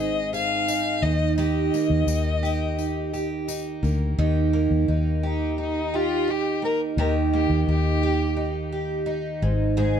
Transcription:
0.00 0.99 G#1 medium
0.00 1.11 G#2 loud
0.00 1.10 C4 medium
0.00 0.68 D#4 medium
0.00 0.32 G#4 medium
0.00 0.31 D#5 loud
0.33 1.10 G#4 medium
0.33 1.04 F5 loud
0.33 tambourine soft
0.68 2.07 D#4 medium
0.68 tambourine medium
1.02 1.69 D#2 medium
1.02 1.37 D#3 medium
1.02 1.37 D#5 loud
1.38 4.18 D#3 loud
1.38 2.42 G4 medium
1.38 3.44 D#5 medium
1.38 tambourine soft
1.74 3.82 A#3 medium
1.74 tambourine medium
1.90 2.06 D#2 medium
2.07 3.78 D#2 medium
2.07 2.78 D#4 medium
2.07 tambourine medium
2.43 3.13 G4 medium
2.43 tambourine soft
2.78 3.48 D#4 medium
2.78 tambourine soft
3.13 4.19 G4 medium
3.13 tambourine soft
3.48 4.88 D#4 medium
3.48 tambourine medium
3.83 4.15 D2 medium
3.83 4.53 A#3 medium
3.83 tambourine soft
4.18 4.67 D#2 loud
4.18 6.98 D#3 loud
4.18 5.22 G4 medium
4.53 6.61 A#3 medium
4.71 4.87 D#2 medium
4.88 6.94 D#2 medium
4.88 5.58 D#4 medium
5.23 5.57 D#4 medium
5.23 5.92 G4 medium
5.58 6.27 D#4 medium
5.58 5.97 D#4 medium
5.94 6.32 F4 loud
5.94 6.98 G4 medium
6.28 7.68 D#4 medium
6.28 6.64 G4 loud
6.62 7.32 A#3 medium
6.62 6.80 A#4 loud
6.97 7.46 D#2 loud
6.97 10.00 D#3 loud
6.97 8.02 G4 medium
6.97 7.14 A#4 loud
7.33 9.50 A#3 medium
7.33 7.66 G4 medium
7.50 7.66 D#2 loud
7.67 9.39 D#2 loud
7.67 8.36 D#4 medium
7.67 8.69 G4 loud
8.03 8.71 G4 medium
8.37 9.06 D#4 medium
8.72 9.50 G4 medium
9.06 10.00 D#4 medium
9.42 10.00 G#1 loud
9.42 9.76 G#2 medium
9.77 10.00 G#2 loud
9.77 10.00 G#4 medium

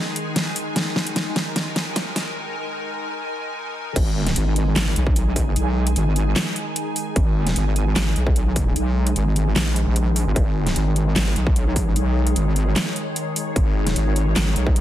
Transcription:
0.00 3.92 D#3 medium
0.00 3.92 G#3 medium
0.00 3.92 D#4 medium
0.00 0.73 G#4 medium
0.00 3.92 G#5 medium
0.16 closed hi-hat medium
0.36 snare medium
0.36 closed hi-hat medium
0.56 open hi-hat medium
0.76 3.93 A#4 medium
0.76 snare medium
0.76 closed hi-hat medium
0.96 snare medium
1.07 closed hi-hat soft
1.16 snare medium
1.16 closed hi-hat medium
1.36 snare medium
1.36 closed hi-hat medium
1.56 snare medium
1.56 closed hi-hat medium
1.76 snare medium
1.76 closed hi-hat medium
1.96 snare medium
1.96 closed hi-hat medium
2.16 snare medium
2.16 open hi-hat medium
3.96 4.35 G#1 medium
3.96 14.81 D#3 medium
3.96 14.81 G#3 medium
3.96 14.81 D#4 medium
3.96 14.81 G#4 medium
3.96 10.34 G#5 medium
3.96 kick loud
3.96 closed hi-hat medium
3.96 crash loud
4.27 snare soft
4.27 closed hi-hat medium
4.36 4.75 G#1 loud
4.36 closed hi-hat medium
4.56 closed hi-hat medium
4.76 4.95 G#1 loud
4.76 snare loud
4.76 clap medium
4.76 closed hi-hat medium
4.96 5.55 B1 loud
4.96 closed hi-hat medium
5.07 kick loud
5.16 closed hi-hat medium
5.36 kick medium
5.36 open hi-hat medium
5.56 5.95 B1 loud
5.56 closed hi-hat medium
5.87 closed hi-hat medium
5.96 6.35 G#1 loud
5.96 closed hi-hat medium
6.16 closed hi-hat medium
6.36 snare loud
6.36 clap medium
6.36 closed hi-hat medium
6.56 closed hi-hat medium
6.76 closed hi-hat medium
6.96 open hi-hat medium
7.16 7.55 G#1 medium
7.16 kick loud
7.16 closed hi-hat medium
7.47 snare soft
7.47 closed hi-hat medium
7.56 7.95 G#1 loud
7.56 closed hi-hat medium
7.76 closed hi-hat medium
7.96 8.15 G#1 loud
7.96 snare loud
7.96 clap medium
7.96 closed hi-hat medium
8.16 8.74 B1 loud
8.16 closed hi-hat medium
8.27 kick loud
8.36 closed hi-hat medium
8.56 kick medium
8.56 open hi-hat medium
8.76 9.15 B1 medium
8.76 closed hi-hat medium
9.07 closed hi-hat soft
9.16 9.55 G#1 loud
9.16 closed hi-hat medium
9.36 closed hi-hat medium
9.56 9.85 A#1 loud
9.56 snare loud
9.56 clap medium
9.56 closed hi-hat medium
9.76 closed hi-hat soft
9.87 10.25 A#1 loud
9.96 closed hi-hat medium
10.16 open hi-hat medium
10.27 10.35 G#1 loud
10.36 10.75 G#1 loud
10.36 14.81 C#5 medium
10.36 kick loud
10.36 closed hi-hat medium
10.67 snare soft
10.67 closed hi-hat medium
10.76 11.14 G#1 loud
10.76 closed hi-hat medium
10.96 closed hi-hat medium
11.16 11.35 G#1 loud
11.16 snare loud
11.16 clap medium
11.16 closed hi-hat medium
11.36 11.77 B1 medium
11.36 closed hi-hat medium
11.47 kick loud
11.56 closed hi-hat medium
11.76 11.95 A#1 medium
11.76 kick medium
11.76 open hi-hat loud
11.96 12.34 B1 medium
11.96 closed hi-hat medium
12.27 closed hi-hat medium
12.36 12.75 G#1 loud
12.36 closed hi-hat medium
12.56 closed hi-hat medium
12.76 snare loud
12.76 clap medium
12.76 closed hi-hat medium
12.96 closed hi-hat medium
13.16 closed hi-hat medium
13.36 open hi-hat loud
13.56 13.95 G#1 medium
13.56 kick loud
13.56 closed hi-hat medium
13.87 snare soft
13.87 closed hi-hat medium
13.96 14.35 G#1 loud
13.96 closed hi-hat medium
14.16 closed hi-hat medium
14.36 14.55 G#1 loud
14.36 snare loud
14.36 clap medium
14.36 closed hi-hat medium
14.56 14.81 B1 loud
14.56 closed hi-hat medium
14.67 kick loud
14.76 closed hi-hat medium

